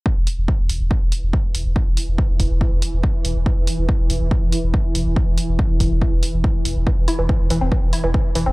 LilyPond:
<<
  \new Staff \with { instrumentName = "Synth arpeggio sound" } { \clef bass \time 4/4 \key c \major \tempo 4 = 141 r1 | r1 | r1 | r1 |
e16 r16 e'16 e16 e16 r16 e16 c'16 e16 r16 e'16 e16 e16 r16 e16 c'16 | }
  \new Staff \with { instrumentName = "Synth drone" } { \clef bass \time 4/4 \key c \major e1~ | e1~ | e1~ | e1~ |
e1 | }
  \new Staff \with { instrumentName = "Sub bass" } { \clef bass \time 4/4 \key c \major r16 e,,16 r16 e,,16 r16 e,,16 e,,16 e,,16 r16 e,,16 r16 e,,16 r8 e,,16 e,,16 | r16 e,,16 r16 e,,16 r16 e,,16 e,,16 e,,16 r16 e,,16 r16 e,,16 r8 e,,16 e,,16 | r16 e,,16 r16 e,,16 r16 e,,16 e,,16 e,,16 r16 e,,16 r16 e,,16 r8 e,,16 e,,16 | r16 e,,16 r16 e,,16 r16 e,,16 e,,16 e,,16 r16 e,,16 r16 e,,16 r8 e,,16 e,,16 |
r16 e,,16 r16 e,,16 r16 e,,16 e,,16 e,,16 r16 e,,16 r16 e,,16 r8 e,,16 e,,16 | }
  \new DrumStaff \with { instrumentName = "Drums" } \drummode { \time 4/4 bd8 hho8 bd8 hho8 bd8 hho8 bd8 hho8 | bd8 hho8 bd8 <hho bd>8 bd8 hho8 bd8 hho8 | bd8 hho8 bd8 hho8 bd8 hho8 bd8 hho8 | bd8 hho8 bd8 <hho bd>8 bd8 hho8 bd8 hho8 |
bd8 hho8 bd8 hho8 bd8 hho8 bd8 hho8 | }
>>